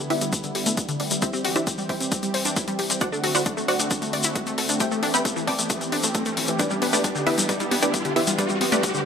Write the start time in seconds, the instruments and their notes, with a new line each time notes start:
Already playing: analog synth pad D3 G3 B3 E4, riser
0.10 analog synth bass G1, synth arpeggio sound B3, synth pluck E4 G4 B4 E5, open hi-hat
0.21 analog synth bass G1, synth arpeggio sound G3, closed hi-hat, shaker
0.33 synth arpeggio sound G3, kick, closed hi-hat, shaker
0.44 synth arpeggio sound D3, closed hi-hat, shaker
0.55 analog synth bass G1, synth arpeggio sound G4, open hi-hat
0.66 analog synth bass G1, synth arpeggio sound A3, closed hi-hat, shaker
0.77 synth arpeggio sound B3, kick, closed hi-hat, shaker
0.89 synth arpeggio sound D3, closed hi-hat, shaker
1.00 analog synth bass G1, synth arpeggio sound D4, open hi-hat
1.11 analog synth bass G1, synth arpeggio sound G3, closed hi-hat, shaker
1.22 analog synth pad E3 C4 G4, synth arpeggio sound C4, synth pluck E4 G4 C5 E5, kick, closed hi-hat, shaker
1.33 synth arpeggio sound C4, synth pluck G4, shaker
1.45 analog synth bass C2, synth arpeggio sound F#4, synth pluck G4, open hi-hat
1.56 analog synth bass C2, synth arpeggio sound D4, synth pluck E4 G4 C5 E5, closed hi-hat, shaker
1.67 synth arpeggio sound C4, synth pluck G4, kick, closed hi-hat, shaker
1.78 synth arpeggio sound G3, synth pluck G4, shaker
1.89 analog synth bass C2, synth arpeggio sound E4, synth pluck G4 C5 E5 G5, kick, open hi-hat
2.00 analog synth bass C2, synth arpeggio sound C4, closed hi-hat, shaker
2.12 synth arpeggio sound C4, kick, closed hi-hat, shaker
2.23 synth arpeggio sound G3, closed hi-hat, shaker
2.34 analog synth bass C2, synth arpeggio sound C5, open hi-hat
2.45 analog synth bass C2, synth arpeggio sound D4, closed hi-hat, shaker
2.56 synth arpeggio sound E4, kick, closed hi-hat, shaker
2.68 synth arpeggio sound G3, closed hi-hat, shaker
2.79 analog synth bass C2, synth arpeggio sound G4, open hi-hat
2.90 analog synth bass C2, synth arpeggio sound C4, closed hi-hat, shaker
3.01 analog synth pad D3 A3 C4 F#4, synth arpeggio sound D4, synth pluck F#4 C5 D5 F#5, kick, closed hi-hat, shaker
3.12 synth arpeggio sound D4, synth pluck A4, shaker
3.24 analog synth bass D2, synth arpeggio sound F#4, synth pluck A4, open hi-hat
3.35 analog synth bass D2, synth arpeggio sound E4, synth pluck F#4 C5 D5 F#5, open hi-hat, shaker
3.46 synth arpeggio sound D4, synth pluck A4, kick, closed hi-hat, shaker
3.57 synth arpeggio sound A3, synth pluck A4, shaker
3.68 analog synth bass D2, synth arpeggio sound F#4, synth pluck F#4 C5 D5 F#5, open hi-hat
3.79 analog synth bass D2, synth arpeggio sound D4, closed hi-hat, shaker
3.91 synth arpeggio sound D4, kick, closed hi-hat, shaker
4.02 synth arpeggio sound A3, closed hi-hat, shaker
4.13 analog synth bass D2, synth arpeggio sound D5, open hi-hat
4.23 analog synth bass D2, synth arpeggio sound E4, closed hi-hat, shaker
4.35 synth arpeggio sound F#4, kick, closed hi-hat, shaker
4.47 synth arpeggio sound A3, closed hi-hat, shaker
4.58 analog synth bass D2, synth arpeggio sound A4, open hi-hat
4.69 analog synth bass D2, synth arpeggio sound D4, closed hi-hat, shaker
4.80 analog synth pad E3 G4, synth arpeggio sound A3, synth pluck G4 C5 E5 G5, kick, closed hi-hat, shaker
4.91 synth arpeggio sound A3, synth pluck A4, shaker
5.03 analog synth bass A1, synth arpeggio sound D4, synth pluck A4, open hi-hat
5.14 analog synth bass A1, synth arpeggio sound B3, synth pluck B4 E5 G5 B5, closed hi-hat, shaker
5.25 synth arpeggio sound A3, synth pluck A4, kick, closed hi-hat, shaker
5.36 synth arpeggio sound E3, synth pluck A4, shaker
5.47 analog synth bass A1, synth arpeggio sound C4, synth pluck D5 G5 A5 D6, kick, open hi-hat
5.59 analog synth bass A1, synth arpeggio sound A3, closed hi-hat, shaker
5.70 synth arpeggio sound A3, kick, closed hi-hat, shaker
5.81 synth arpeggio sound E3, closed hi-hat, shaker
5.92 analog synth bass A1, synth arpeggio sound D4, open hi-hat
6.03 analog synth bass A1, synth arpeggio sound A3, closed hi-hat, shaker
6.15 synth arpeggio sound A3, kick, closed hi-hat, shaker
6.26 synth arpeggio sound A3, closed hi-hat, shaker
6.37 analog synth bass A1, synth arpeggio sound E3, open hi-hat
6.47 analog synth bass A1, synth arpeggio sound E3, closed hi-hat, shaker
6.59 synth arpeggio sound G3, analog synth pad B3 D4, synth pluck D4 G4 B4 D5, kick, closed hi-hat, shaker
6.70 synth arpeggio sound G3, synth pluck G4, shaker
6.82 analog synth bass G1, synth arpeggio sound B3, synth pluck G4, open hi-hat
6.93 analog synth bass G1, synth arpeggio sound A3, synth pluck D4 G4 B4 D5, open hi-hat, shaker
7.04 synth arpeggio sound G3, synth pluck G4, kick, closed hi-hat, shaker
7.15 synth arpeggio sound D3, synth pluck G4, shaker
7.27 analog synth bass G1, synth arpeggio sound B3, synth pluck E4 G4 B4 E5, open hi-hat
7.38 analog synth bass G1, synth arpeggio sound G3, closed hi-hat, shaker
7.49 synth arpeggio sound G3, synth pluck D4 G4 B4 D5, kick, closed hi-hat, shaker
7.60 synth arpeggio sound G3, synth pluck G4, closed hi-hat, shaker
7.71 analog synth bass G1, synth arpeggio sound B3, synth pluck G4, open hi-hat
7.82 analog synth bass G1, synth arpeggio sound A3, synth pluck D4 G4 B4 D5, closed hi-hat, shaker
7.94 synth arpeggio sound G3, synth pluck G4, kick, closed hi-hat, shaker
8.05 synth arpeggio sound D3, synth pluck G4, closed hi-hat, shaker
8.16 analog synth bass G1, synth arpeggio sound B3, synth pluck E4 G4 B4 E5, open hi-hat
8.27 analog synth bass G1, synth arpeggio sound G3, closed hi-hat, shaker
8.38 synth arpeggio sound G3, analog synth pad G3 C4 G4, synth pluck D4 G4 B4 D5, kick, closed hi-hat, shaker
8.49 synth arpeggio sound G3, synth pluck G4, shaker
8.61 analog synth bass C2, synth arpeggio sound B3, synth pluck G4, open hi-hat
8.72 synth arpeggio sound A3, synth pluck D4 G4 B4 D5, closed hi-hat, shaker
8.83 synth arpeggio sound G3, synth pluck G4, kick, closed hi-hat, shaker
8.94 synth arpeggio sound D3, synth pluck G4, shaker